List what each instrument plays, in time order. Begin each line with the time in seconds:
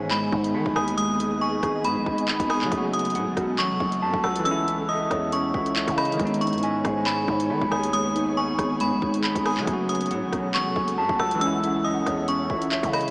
Already playing: 808-style bass G#2, tine electric piano D#3 G#3 B3 D#4, clean electric guitar G#3 D#4 G#4 G#5, ambient pad B3 G#4 D#5
0.11 clean electric guitar G#3, synth bell B5, clap
0.32 808-style bass G#2, clean electric guitar D#4, kick
0.44 closed hi-hat
0.54 808-style bass D#3, clean electric guitar B5
0.66 808-style bass B1, kick
0.75 808-style bass D#2, clean electric guitar G#5, synth bell D#6, cross-stick
0.88 closed hi-hat
0.97 clean electric guitar G#3, synth bell D#6, closed hi-hat
1.19 clean electric guitar D#4, closed hi-hat
1.41 clean electric guitar G#5, synth bell C#6
1.63 808-style bass G#1, clean electric guitar G#4, kick, cross-stick, closed hi-hat
1.84 808-style bass G#2, clean electric guitar G#3, synth bell B5, closed hi-hat
1.96 808-style bass G#1
2.06 808-style bass G#1, clean electric guitar D#4, kick
2.18 closed hi-hat
2.28 clean electric guitar B5, clap
2.40 808-style bass G#1, kick, closed hi-hat
2.50 clean electric guitar G#5, synth bell D#6, cross-stick, open hi-hat
2.61 808-style bass D#3, clap
2.66 tine electric piano F#3 A3
2.72 808-style bass F#1, clean electric guitar F#3, ambient pad C#4 A4 F#5, tine electric piano C#4, kick, closed hi-hat
2.78 tine electric piano F#4
2.93 clean electric guitar C#4, synth bell D#6, closed hi-hat
2.99 closed hi-hat
3.05 closed hi-hat
3.10 closed hi-hat
3.15 808-style bass A2, clean electric guitar F#5, closed hi-hat
3.27 808-style bass F#1
3.37 808-style bass E1, clean electric guitar F#4, kick, cross-stick, closed hi-hat
3.58 808-style bass A1, clean electric guitar F#3, synth bell C#6, clap
3.70 808-style bass E1
3.80 808-style bass F#1, clean electric guitar C#4, kick
3.92 closed hi-hat
4.02 808-style bass F#2, clean electric guitar A5
4.14 808-style bass F#1, kick
4.24 808-style bass C#2, clean electric guitar F#5, synth bell E6, cross-stick
4.36 tine electric piano E3, closed hi-hat
4.43 tine electric piano G#3 C#4, clean electric guitar C#4, ambient pad E4 C#5, synth bell E6, closed hi-hat
4.51 tine electric piano E4
4.68 clean electric guitar E4, closed hi-hat
4.89 clean electric guitar D#5, synth bell D#6
5.11 808-style bass E2, clean electric guitar C#5, kick, cross-stick, closed hi-hat
5.32 clean electric guitar C#4, synth bell C#6, closed hi-hat
5.54 808-style bass C#2, clean electric guitar E4, kick
5.66 closed hi-hat
5.76 clean electric guitar E5, clap
5.88 808-style bass C#3, kick, closed hi-hat
5.98 clean electric guitar D#5, synth bell B5, cross-stick, closed hi-hat, open hi-hat
6.05 closed hi-hat
6.12 tine electric piano D#3, closed hi-hat
6.17 808-style bass G#1, tine electric piano G#3 B3, clean electric guitar G#3, ambient pad B3 G#4, kick, closed hi-hat
6.25 tine electric piano D#4, closed hi-hat
6.34 closed hi-hat
6.41 clean electric guitar D#4, synth bell C#6, closed hi-hat
6.47 closed hi-hat
6.53 808-style bass G#2, closed hi-hat
6.58 closed hi-hat
6.63 clean electric guitar G#5, closed hi-hat
6.85 808-style bass G#2, clean electric guitar G#4, kick, cross-stick, closed hi-hat
7.06 clean electric guitar G#3, synth bell B5, clap
7.28 808-style bass G#2, clean electric guitar D#4, kick
7.40 closed hi-hat
7.50 808-style bass D#3, clean electric guitar B5
7.61 808-style bass B1, kick
7.71 808-style bass D#2, clean electric guitar G#5, synth bell D#6, cross-stick
7.83 closed hi-hat
7.93 clean electric guitar G#3, synth bell D#6, closed hi-hat
8.15 clean electric guitar D#4, closed hi-hat
8.37 clean electric guitar G#5, synth bell C#6
8.58 808-style bass G#1, clean electric guitar G#4, kick, cross-stick, closed hi-hat
8.80 808-style bass G#2, clean electric guitar G#3, synth bell B5, closed hi-hat
8.92 808-style bass G#1
9.02 808-style bass G#1, clean electric guitar D#4, kick
9.14 closed hi-hat
9.24 clean electric guitar B5, clap
9.35 808-style bass G#1, kick, closed hi-hat
9.46 clean electric guitar G#5, synth bell D#6, cross-stick, open hi-hat
9.57 808-style bass D#3, clap
9.61 tine electric piano F#3 A3
9.67 808-style bass F#1, clean electric guitar F#3, ambient pad C#4 A4 F#5, tine electric piano C#4, kick, closed hi-hat
9.73 tine electric piano F#4
9.89 clean electric guitar C#4, synth bell D#6, closed hi-hat
9.95 closed hi-hat
10.01 closed hi-hat
10.06 closed hi-hat
10.11 808-style bass A2, clean electric guitar F#5, closed hi-hat
10.22 808-style bass F#1
10.33 808-style bass E1, clean electric guitar F#4, kick, cross-stick, closed hi-hat
10.54 808-style bass A1, clean electric guitar F#3, synth bell C#6, clap
10.66 808-style bass E1
10.76 808-style bass F#1, clean electric guitar C#4, kick
10.88 closed hi-hat
10.98 808-style bass F#2, clean electric guitar A5
11.09 808-style bass F#1, kick
11.19 808-style bass C#2, clean electric guitar F#5, synth bell E6, cross-stick
11.31 tine electric piano E3, closed hi-hat
11.39 tine electric piano G#3 C#4, ambient pad C#4 E4 C#5, clean electric guitar C#4, synth bell E6, closed hi-hat
11.47 tine electric piano E4
11.64 clean electric guitar E4, closed hi-hat
11.84 clean electric guitar D#5, synth bell D#6
12.06 808-style bass E2, clean electric guitar C#5, kick, cross-stick, closed hi-hat
12.28 clean electric guitar C#4, synth bell C#6, closed hi-hat
12.50 808-style bass C#2, clean electric guitar E4, kick
12.62 closed hi-hat
12.72 clean electric guitar E5, clap
12.83 808-style bass C#3, kick, closed hi-hat
12.93 clean electric guitar D#5, synth bell B5, cross-stick, closed hi-hat, open hi-hat
13.01 closed hi-hat